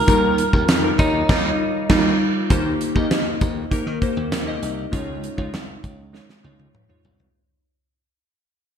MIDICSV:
0, 0, Header, 1, 5, 480
1, 0, Start_track
1, 0, Tempo, 606061
1, 63, Time_signature, 4, 2, 24, 8
1, 6946, End_track
2, 0, Start_track
2, 0, Title_t, "Clean electric guitar"
2, 0, Program_c, 0, 27
2, 0, Note_on_c, 0, 70, 97
2, 788, Note_on_c, 0, 63, 80
2, 813, Note_off_c, 0, 70, 0
2, 1714, Note_off_c, 0, 63, 0
2, 6946, End_track
3, 0, Start_track
3, 0, Title_t, "Synth keys"
3, 0, Program_c, 1, 88
3, 0, Control_c, 1, 64, 127
3, 0, Note_on_c, 1, 56, 74
3, 0, Note_on_c, 1, 63, 68
3, 0, Note_on_c, 1, 65, 72
3, 0, Note_on_c, 1, 70, 85
3, 56, Note_on_c, 1, 55, 78
3, 60, Note_off_c, 1, 63, 0
3, 60, Note_on_c, 1, 51, 65
3, 60, Note_on_c, 1, 63, 71
3, 61, Note_off_c, 1, 65, 0
3, 61, Note_on_c, 1, 65, 68
3, 64, Note_off_c, 1, 70, 0
3, 64, Note_on_c, 1, 70, 86
3, 74, Control_c, 1, 64, 0
3, 81, Note_off_c, 1, 56, 0
3, 198, Control_c, 1, 64, 127
3, 429, Note_off_c, 1, 55, 0
3, 430, Note_off_c, 1, 63, 0
3, 431, Note_off_c, 1, 65, 0
3, 433, Note_off_c, 1, 70, 0
3, 656, Note_on_c, 1, 55, 76
3, 660, Note_on_c, 1, 63, 70
3, 662, Note_on_c, 1, 65, 66
3, 666, Note_on_c, 1, 70, 82
3, 734, Note_off_c, 1, 55, 0
3, 735, Note_off_c, 1, 63, 0
3, 737, Note_off_c, 1, 65, 0
3, 739, Note_off_c, 1, 70, 0
3, 750, Note_off_c, 1, 51, 0
3, 779, Note_on_c, 1, 55, 72
3, 781, Note_on_c, 1, 63, 67
3, 784, Note_on_c, 1, 65, 66
3, 788, Note_on_c, 1, 73, 81
3, 1011, Note_off_c, 1, 55, 0
3, 1013, Note_off_c, 1, 63, 0
3, 1016, Note_off_c, 1, 65, 0
3, 1021, Note_on_c, 1, 55, 96
3, 1023, Note_on_c, 1, 63, 101
3, 1026, Note_off_c, 1, 73, 0
3, 1026, Note_on_c, 1, 65, 97
3, 1185, Note_off_c, 1, 55, 0
3, 1186, Note_off_c, 1, 63, 0
3, 1188, Note_off_c, 1, 65, 0
3, 1499, Note_on_c, 1, 55, 99
3, 1504, Note_on_c, 1, 63, 97
3, 1506, Note_on_c, 1, 65, 101
3, 1664, Note_off_c, 1, 55, 0
3, 1667, Note_off_c, 1, 63, 0
3, 1668, Note_off_c, 1, 65, 0
3, 1979, Note_on_c, 1, 58, 82
3, 1982, Note_on_c, 1, 63, 78
3, 1983, Note_on_c, 1, 51, 72
3, 1986, Note_on_c, 1, 67, 77
3, 1989, Note_on_c, 1, 72, 90
3, 1994, Control_c, 1, 64, 0
3, 2114, Control_c, 1, 64, 127
3, 2203, Note_off_c, 1, 58, 0
3, 2204, Note_off_c, 1, 63, 0
3, 2206, Note_off_c, 1, 67, 0
3, 2207, Note_off_c, 1, 72, 0
3, 2336, Note_on_c, 1, 58, 80
3, 2338, Note_on_c, 1, 63, 69
3, 2342, Note_on_c, 1, 67, 70
3, 2344, Note_on_c, 1, 75, 91
3, 2672, Note_off_c, 1, 51, 0
3, 2708, Note_off_c, 1, 58, 0
3, 2710, Note_off_c, 1, 63, 0
3, 2712, Note_off_c, 1, 67, 0
3, 2713, Note_off_c, 1, 75, 0
3, 2937, Note_on_c, 1, 58, 77
3, 2940, Note_on_c, 1, 63, 72
3, 2942, Note_on_c, 1, 67, 70
3, 2947, Note_on_c, 1, 70, 87
3, 3088, Note_off_c, 1, 58, 0
3, 3089, Note_off_c, 1, 63, 0
3, 3090, Note_off_c, 1, 67, 0
3, 3093, Note_off_c, 1, 70, 0
3, 3179, Note_on_c, 1, 58, 81
3, 3181, Note_on_c, 1, 63, 73
3, 3183, Note_on_c, 1, 67, 73
3, 3188, Note_on_c, 1, 72, 84
3, 3403, Note_off_c, 1, 58, 0
3, 3404, Note_off_c, 1, 63, 0
3, 3405, Note_off_c, 1, 67, 0
3, 3407, Note_off_c, 1, 72, 0
3, 3536, Note_on_c, 1, 58, 77
3, 3540, Note_on_c, 1, 63, 72
3, 3542, Note_on_c, 1, 67, 79
3, 3548, Note_on_c, 1, 75, 90
3, 3761, Note_off_c, 1, 58, 0
3, 3763, Note_off_c, 1, 63, 0
3, 3764, Note_off_c, 1, 67, 0
3, 3767, Note_off_c, 1, 75, 0
3, 3893, Note_on_c, 1, 56, 83
3, 3898, Note_on_c, 1, 61, 74
3, 3898, Note_on_c, 1, 63, 72
3, 3900, Note_on_c, 1, 65, 76
3, 3903, Note_on_c, 1, 73, 94
3, 3915, Control_c, 1, 64, 0
3, 4058, Control_c, 1, 64, 127
3, 4120, Note_off_c, 1, 56, 0
3, 4122, Note_off_c, 1, 63, 0
3, 4123, Note_off_c, 1, 65, 0
3, 4125, Note_off_c, 1, 73, 0
3, 4254, Note_on_c, 1, 56, 78
3, 4258, Note_on_c, 1, 63, 68
3, 4262, Note_on_c, 1, 65, 75
3, 4264, Note_on_c, 1, 73, 89
3, 4589, Note_off_c, 1, 61, 0
3, 4628, Note_off_c, 1, 56, 0
3, 4629, Note_off_c, 1, 63, 0
3, 4631, Note_off_c, 1, 65, 0
3, 4632, Note_off_c, 1, 73, 0
3, 4854, Note_on_c, 1, 56, 72
3, 4857, Note_on_c, 1, 63, 67
3, 4862, Note_on_c, 1, 65, 64
3, 4863, Note_on_c, 1, 73, 83
3, 5006, Note_off_c, 1, 56, 0
3, 5008, Note_off_c, 1, 63, 0
3, 5010, Note_off_c, 1, 65, 0
3, 5011, Note_off_c, 1, 73, 0
3, 5093, Note_on_c, 1, 56, 76
3, 5099, Note_on_c, 1, 63, 73
3, 5102, Note_on_c, 1, 65, 71
3, 5105, Note_on_c, 1, 73, 83
3, 5320, Note_off_c, 1, 56, 0
3, 5322, Note_off_c, 1, 63, 0
3, 5324, Note_off_c, 1, 65, 0
3, 5325, Note_off_c, 1, 73, 0
3, 5455, Note_on_c, 1, 56, 71
3, 5458, Note_on_c, 1, 63, 65
3, 5459, Note_on_c, 1, 65, 70
3, 5464, Note_on_c, 1, 73, 83
3, 5681, Note_off_c, 1, 56, 0
3, 5682, Note_off_c, 1, 63, 0
3, 5683, Note_off_c, 1, 65, 0
3, 5685, Note_off_c, 1, 73, 0
3, 5833, Control_c, 1, 64, 0
3, 6946, End_track
4, 0, Start_track
4, 0, Title_t, "Slap bass"
4, 0, Program_c, 2, 36
4, 64, Note_on_c, 2, 39, 103
4, 334, Note_off_c, 2, 39, 0
4, 422, Note_on_c, 2, 39, 86
4, 513, Note_off_c, 2, 39, 0
4, 542, Note_on_c, 2, 41, 95
4, 722, Note_off_c, 2, 41, 0
4, 786, Note_on_c, 2, 39, 90
4, 965, Note_off_c, 2, 39, 0
4, 1025, Note_on_c, 2, 39, 98
4, 1187, Note_off_c, 2, 39, 0
4, 1504, Note_on_c, 2, 39, 107
4, 1667, Note_off_c, 2, 39, 0
4, 1984, Note_on_c, 2, 39, 92
4, 2164, Note_off_c, 2, 39, 0
4, 2343, Note_on_c, 2, 39, 91
4, 2433, Note_off_c, 2, 39, 0
4, 2704, Note_on_c, 2, 39, 71
4, 2884, Note_off_c, 2, 39, 0
4, 3061, Note_on_c, 2, 51, 85
4, 3152, Note_off_c, 2, 51, 0
4, 3301, Note_on_c, 2, 39, 82
4, 3392, Note_off_c, 2, 39, 0
4, 3420, Note_on_c, 2, 39, 92
4, 3601, Note_off_c, 2, 39, 0
4, 3662, Note_on_c, 2, 36, 79
4, 3842, Note_off_c, 2, 36, 0
4, 3904, Note_on_c, 2, 37, 96
4, 4174, Note_off_c, 2, 37, 0
4, 4262, Note_on_c, 2, 37, 77
4, 4352, Note_off_c, 2, 37, 0
4, 4383, Note_on_c, 2, 36, 81
4, 4563, Note_off_c, 2, 36, 0
4, 4625, Note_on_c, 2, 37, 76
4, 4895, Note_off_c, 2, 37, 0
4, 5103, Note_on_c, 2, 37, 76
4, 5283, Note_off_c, 2, 37, 0
4, 5582, Note_on_c, 2, 36, 68
4, 5763, Note_off_c, 2, 36, 0
4, 6946, End_track
5, 0, Start_track
5, 0, Title_t, "Drums"
5, 62, Note_on_c, 9, 42, 99
5, 63, Note_on_c, 9, 36, 106
5, 141, Note_off_c, 9, 42, 0
5, 142, Note_off_c, 9, 36, 0
5, 303, Note_on_c, 9, 42, 73
5, 382, Note_off_c, 9, 42, 0
5, 422, Note_on_c, 9, 36, 83
5, 501, Note_off_c, 9, 36, 0
5, 541, Note_on_c, 9, 54, 69
5, 544, Note_on_c, 9, 42, 87
5, 545, Note_on_c, 9, 38, 115
5, 620, Note_off_c, 9, 54, 0
5, 623, Note_off_c, 9, 42, 0
5, 624, Note_off_c, 9, 38, 0
5, 784, Note_on_c, 9, 36, 104
5, 784, Note_on_c, 9, 42, 70
5, 864, Note_off_c, 9, 36, 0
5, 864, Note_off_c, 9, 42, 0
5, 1024, Note_on_c, 9, 36, 109
5, 1025, Note_on_c, 9, 38, 106
5, 1025, Note_on_c, 9, 49, 79
5, 1103, Note_off_c, 9, 36, 0
5, 1104, Note_off_c, 9, 38, 0
5, 1104, Note_off_c, 9, 49, 0
5, 1502, Note_on_c, 9, 38, 106
5, 1502, Note_on_c, 9, 49, 80
5, 1503, Note_on_c, 9, 36, 106
5, 1581, Note_off_c, 9, 38, 0
5, 1581, Note_off_c, 9, 49, 0
5, 1583, Note_off_c, 9, 36, 0
5, 1982, Note_on_c, 9, 42, 90
5, 1983, Note_on_c, 9, 36, 102
5, 2061, Note_off_c, 9, 42, 0
5, 2062, Note_off_c, 9, 36, 0
5, 2224, Note_on_c, 9, 42, 67
5, 2303, Note_off_c, 9, 42, 0
5, 2342, Note_on_c, 9, 36, 84
5, 2421, Note_off_c, 9, 36, 0
5, 2463, Note_on_c, 9, 42, 80
5, 2464, Note_on_c, 9, 38, 107
5, 2542, Note_off_c, 9, 42, 0
5, 2543, Note_off_c, 9, 38, 0
5, 2702, Note_on_c, 9, 42, 63
5, 2704, Note_on_c, 9, 36, 99
5, 2782, Note_off_c, 9, 42, 0
5, 2783, Note_off_c, 9, 36, 0
5, 2942, Note_on_c, 9, 36, 80
5, 2944, Note_on_c, 9, 42, 80
5, 3021, Note_off_c, 9, 36, 0
5, 3024, Note_off_c, 9, 42, 0
5, 3183, Note_on_c, 9, 36, 87
5, 3184, Note_on_c, 9, 42, 64
5, 3262, Note_off_c, 9, 36, 0
5, 3263, Note_off_c, 9, 42, 0
5, 3423, Note_on_c, 9, 38, 106
5, 3423, Note_on_c, 9, 42, 81
5, 3502, Note_off_c, 9, 38, 0
5, 3502, Note_off_c, 9, 42, 0
5, 3664, Note_on_c, 9, 42, 65
5, 3743, Note_off_c, 9, 42, 0
5, 3904, Note_on_c, 9, 36, 98
5, 3906, Note_on_c, 9, 42, 88
5, 3983, Note_off_c, 9, 36, 0
5, 3985, Note_off_c, 9, 42, 0
5, 4147, Note_on_c, 9, 42, 67
5, 4226, Note_off_c, 9, 42, 0
5, 4262, Note_on_c, 9, 36, 76
5, 4341, Note_off_c, 9, 36, 0
5, 4385, Note_on_c, 9, 42, 76
5, 4386, Note_on_c, 9, 38, 96
5, 4464, Note_off_c, 9, 42, 0
5, 4465, Note_off_c, 9, 38, 0
5, 4624, Note_on_c, 9, 36, 90
5, 4626, Note_on_c, 9, 42, 63
5, 4704, Note_off_c, 9, 36, 0
5, 4705, Note_off_c, 9, 42, 0
5, 4868, Note_on_c, 9, 38, 46
5, 4947, Note_off_c, 9, 38, 0
5, 4985, Note_on_c, 9, 38, 45
5, 5064, Note_off_c, 9, 38, 0
5, 5104, Note_on_c, 9, 48, 57
5, 5183, Note_off_c, 9, 48, 0
5, 5224, Note_on_c, 9, 48, 55
5, 5303, Note_off_c, 9, 48, 0
5, 5343, Note_on_c, 9, 47, 70
5, 5423, Note_off_c, 9, 47, 0
5, 5462, Note_on_c, 9, 45, 58
5, 5541, Note_off_c, 9, 45, 0
5, 5582, Note_on_c, 9, 43, 80
5, 5662, Note_off_c, 9, 43, 0
5, 5702, Note_on_c, 9, 43, 73
5, 5781, Note_off_c, 9, 43, 0
5, 6946, End_track
0, 0, End_of_file